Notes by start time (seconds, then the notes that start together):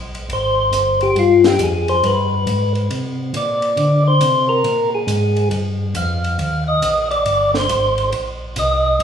Already playing: A#1
0.15 ride
0.28 G#1, ride
0.33 C5
0.72 G1, hi-hat pedal, ride
1.01 G4, ride
1.15 G2 F4, ride
1.44 G4, snare, ride
1.59 F2, hi-hat pedal, ride
1.63 G#4
1.88 C5, ride
2.03 G2 B4, ride
2.47 G#2, hi-hat pedal, ride
2.75 ride
2.90 C3, ride
3.33 A#2 D5, hi-hat pedal, ride
3.62 ride
3.77 D3, ride
4.08 C5
4.21 C3, hi-hat pedal, ride
4.49 A#4
4.64 A#2, ride
4.95 G#4
5.07 G#2, hi-hat pedal, ride
5.36 ride
5.51 G2, ride
5.95 F2 F5, hi-hat pedal, ride
6.24 ride
6.39 D#2, ride
6.68 D#5
6.82 A#1, hi-hat pedal, ride
7.11 D5, ride
7.26 G1, ride
7.54 C5, snare
7.69 G#1, hi-hat pedal, ride
7.98 ride
8.12 A#1, ride
8.56 C2 D#5, hi-hat pedal, ride
9.00 C#2, ride